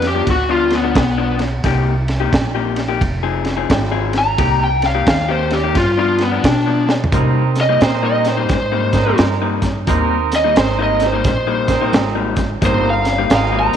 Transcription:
Already playing: upright bass F2
0.02 snare, ride
0.07 lead electric guitar G4
0.15 clean electric guitar G2 F3 B3 D4
0.27 upright bass D2, lead electric guitar F#4, kick, ride
0.49 clean electric guitar G2 F3 B3 D4, lead electric guitar F4
0.70 snare, ride
0.75 lead electric guitar B3
0.83 clean electric guitar G2 F3 B3 D4
0.95 upright bass B1, lead electric guitar B3, kick, snare, ride
1.18 clean electric guitar G2 F3 B3 D4
1.39 snare, ride
1.64 upright bass C2, clean electric guitar C3 A#3 D#4 G4, kick, snare, ride
2.08 snare, ride
2.20 clean electric guitar C3 A#3 D#4 G4
2.33 upright bass A#1, muted clean electric guitar stroke, kick, snare, ride
2.55 clean electric guitar C3 A#3 D#4 G4
2.76 snare, ride
2.88 clean electric guitar C3 A#3 D#4 G4
3.01 upright bass F1, kick, ride
3.23 clean electric guitar F3 C4 D#4 G#4
3.45 snare, ride
3.57 clean electric guitar F3 C4 D#4 G#4
3.70 upright bass G#1, kick, snare, ride
3.92 clean electric guitar F3 C4 D#4 G#4
4.13 snare, ride
4.19 lead electric guitar A#5
4.38 upright bass C2, clean electric guitar C3 A#3 D#4 G4, kick, ride
4.64 lead electric guitar G5
4.82 snare, ride
4.86 lead electric guitar F5
4.95 clean electric guitar C3 A#3 D#4 G4
5.07 upright bass D#2, lead electric guitar F5, muted clean electric guitar stroke, kick, snare, ride
5.29 clean electric guitar C3 A#3 D#4 G4, lead electric guitar C5
5.50 lead electric guitar G4, snare, ride
5.63 clean electric guitar C3 A#3 D#4 G4
5.75 upright bass G2, lead electric guitar F4, kick, snare, ride
5.98 clean electric guitar G2 F3 B3 D4, lead electric guitar F4
6.18 snare, ride
6.22 lead electric guitar B3
6.32 clean electric guitar G2 F3 B3 D4
6.44 upright bass B2, lead electric guitar D4, kick, snare, ride
6.66 clean electric guitar G2 F3 B3 D4
6.89 snare
7.04 floor tom
7.12 upright bass C3, clean electric guitar C3 G3 A#3 D#4, horn section C4 D#4 A#4, kick, closed hi-hat
7.55 snare, closed hi-hat
7.61 lead electric guitar D#5
7.69 clean electric guitar C3 G3 A#3 D#4
7.81 upright bass A#2, horn section C4 D#4 A#4, lead electric guitar C5, muted clean electric guitar stroke, snare, closed hi-hat
8.03 clean electric guitar C3 G3 A#3 D#4, lead electric guitar D#5
8.25 snare, closed hi-hat
8.29 lead electric guitar C5
8.37 clean electric guitar C3 G3 A#3 D#4
8.49 upright bass G#2, kick, snare, closed hi-hat
8.54 lead electric guitar C5
8.72 clean electric guitar C3 G3 A#3 D#4
8.93 horn section C4 D#4 A#4, kick, snare, closed hi-hat
9.07 clean electric guitar C3 G3 A#3 D#4
9.18 upright bass G2, snare, closed hi-hat
9.42 clean electric guitar C3 G3 A#3 D#4
9.62 kick, snare, closed hi-hat
9.87 upright bass D#2, clean electric guitar C3 G3 A#3 D#4, horn section C4 D#4 A#4, kick, closed hi-hat
10.32 snare, closed hi-hat
10.36 lead electric guitar D#5
10.44 clean electric guitar C3 G3 A#3 D#4
10.56 upright bass G#1, horn section C4 D#4 A#4, lead electric guitar C5, muted clean electric guitar stroke, snare, closed hi-hat
10.79 clean electric guitar C3 G3 A#3 D#4
10.83 lead electric guitar D#5
11.00 snare, closed hi-hat
11.07 lead electric guitar C5
11.12 clean electric guitar C3 G3 A#3 D#4
11.24 upright bass A#1, kick, snare, closed hi-hat
11.28 lead electric guitar C5
11.47 clean electric guitar C3 G3 A#3 D#4
11.68 horn section C4 D#4 A#4, kick, snare, closed hi-hat
11.81 clean electric guitar C3 G3 A#3 D#4
11.93 upright bass G#1, snare, closed hi-hat
12.15 clean electric guitar C3 G3 A#3 D#4
12.36 kick, snare, closed hi-hat
12.62 upright bass G1, clean electric guitar C3 G3 A#3 D#4, horn section C4 D#4 A#4, kick, closed hi-hat
12.66 lead electric guitar C5
12.90 lead electric guitar F5
13.05 snare, closed hi-hat
13.18 clean electric guitar C3 G3 A#3 D#4
13.30 upright bass G#1, horn section C4 D#4 A#4, muted clean electric guitar stroke, snare, closed hi-hat
13.36 lead electric guitar F5
13.52 clean electric guitar C3 G3 A#3 D#4
13.60 lead electric guitar A#5
13.73 closed hi-hat

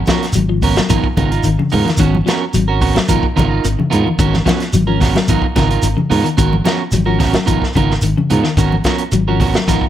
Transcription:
0.06 clean electric guitar F3 B3 C#4 F#4 A#4, kick, snare, closed hi-hat, high conga, shekere
0.22 snare, closed hi-hat
0.33 clean electric guitar F#3, closed hi-hat, shekere
0.37 fingered electric bass G#1
0.49 clean electric guitar F3
0.62 clean electric guitar B3 C#4 A#4, kick, open hi-hat, low conga, shekere
0.76 clean electric guitar F#3, snare, closed hi-hat
0.89 fingered electric bass G#1, clean electric guitar F3 B3 D#4 F4 A#4, kick, closed hi-hat, shekere
1.04 kick
1.17 fingered electric bass G#1, clean electric guitar C#3 B3 D#4 F4 A#4, kick, closed hi-hat, high conga, shekere
1.31 clean electric guitar D#4 F4 A#4, closed hi-hat
1.43 fingered electric bass G#1, clean electric guitar D#3, closed hi-hat, shekere
1.59 clean electric guitar C#3, high conga
1.70 clean electric guitar B3 D#4 F4 A#4, open hi-hat, low conga, shekere
1.74 fingered electric bass G#2
1.85 clean electric guitar D#3, snare, closed hi-hat, high conga
1.97 fingered electric bass G#1, clean electric guitar D#3 B3 C#4 F#4, muted clean electric guitar stroke, kick, closed hi-hat, shekere
2.15 high conga
2.26 clean electric guitar F3 B3 C#4 F#4 A#4, snare, closed hi-hat, high conga, shekere
2.54 fingered electric bass G#1, clean electric guitar F#3, closed hi-hat, shekere
2.68 clean electric guitar C#4 F#4 A#4
2.81 clean electric guitar B3 C#4 F#4 A#4, kick, open hi-hat, low conga, shekere
2.95 clean electric guitar F#3, snare, closed hi-hat
3.08 fingered electric bass G#1, clean electric guitar F3 B3 D#4 F4 A#4, kick, closed hi-hat, shekere
3.23 muted fingered electric bass stroke, kick
3.36 fingered electric bass G#1, clean electric guitar C#3 B3 D#4 F4 A#4, kick, closed hi-hat, high conga, shekere
3.49 clean electric guitar D#4 F4 A#4
3.64 fingered electric bass G#1, clean electric guitar D#3, closed hi-hat, shekere
3.79 clean electric guitar C#3, high conga
3.90 fingered electric bass G#2, clean electric guitar B3 D#4 F4 A#4, closed hi-hat, low conga, shekere
4.05 clean electric guitar D#3, high conga
4.19 fingered electric bass G#1, clean electric guitar D#3 B3 C#4 F#4 A#4, kick, closed hi-hat, shekere
4.34 snare, high conga
4.45 clean electric guitar F3 B3 C#4 F#4, kick, snare, closed hi-hat, high conga, shekere
4.60 snare, closed hi-hat
4.73 fingered electric bass G#1, clean electric guitar F#3, closed hi-hat, high conga, shekere
4.87 clean electric guitar F3 C#4 A#4, muted clean electric guitar stroke
5.00 clean electric guitar B3 C#4 F#4 A#4, kick, snare, open hi-hat, low conga, shekere
5.15 clean electric guitar F#3, snare, closed hi-hat
5.28 fingered electric bass G#1, clean electric guitar F3 B3 D#4 F4 A#4, kick, closed hi-hat, shekere
5.42 kick
5.56 fingered electric bass G#1, clean electric guitar C#3 B3 D#4 F4 A#4, kick, snare, closed hi-hat, high conga, shekere
5.70 clean electric guitar D#4 F4 A#4, closed hi-hat
5.82 fingered electric bass G#1, clean electric guitar D#3, closed hi-hat, shekere
5.97 clean electric guitar C#3, high conga
6.10 fingered electric bass G#2, clean electric guitar B3 D#4 F4 A#4, open hi-hat, low conga, shekere
6.24 clean electric guitar D#3, closed hi-hat
6.37 fingered electric bass G#1, clean electric guitar D#3 B3 F#4 A#4, muted clean electric guitar stroke, kick, closed hi-hat, shekere
6.53 high conga
6.65 clean electric guitar F3 B3 C#4 F#4 A#4, snare, closed hi-hat, high conga, shekere
6.92 fingered electric bass G#1, clean electric guitar F#3, closed hi-hat, high conga, shekere
7.06 clean electric guitar F3 C#4 F#4 A#4
7.19 clean electric guitar B3 C#4 F#4 A#4, kick, snare, open hi-hat, low conga, shekere
7.33 clean electric guitar F#3, snare, closed hi-hat
7.46 fingered electric bass G#1, clean electric guitar F3 B3 D#4 F4 A#4, kick, closed hi-hat, shekere
7.62 muted fingered electric bass stroke, kick, snare
7.73 fingered electric bass G#1, clean electric guitar C#3 B3 D#4 F4 A#4, kick, closed hi-hat, high conga, shekere
7.91 snare
8.02 fingered electric bass G#1, clean electric guitar D#3, closed hi-hat, shekere
8.17 clean electric guitar C#3, high conga
8.30 fingered electric bass G#2, clean electric guitar B3 D#4 F4 A#4, closed hi-hat, low conga, shekere
8.44 clean electric guitar D#3, snare
8.57 fingered electric bass G#1, clean electric guitar D#3 B3 C#4 F#4 A#4, kick, closed hi-hat, shekere
8.72 high conga
8.84 clean electric guitar F3 B3 C#4 F#4 A#4, kick, snare, closed hi-hat, high conga, shekere
8.98 closed hi-hat
9.12 fingered electric bass G#1, clean electric guitar F#3, closed hi-hat, shekere
9.28 clean electric guitar F3 C#4 F#4 A#4
9.40 clean electric guitar B3 C#4 F#4 A#4, kick, open hi-hat, low conga, shekere
9.54 clean electric guitar F#3, snare, closed hi-hat
9.68 fingered electric bass G#1, clean electric guitar F3 B3 D#4 F4 A#4, kick, snare, closed hi-hat, shekere
9.81 kick

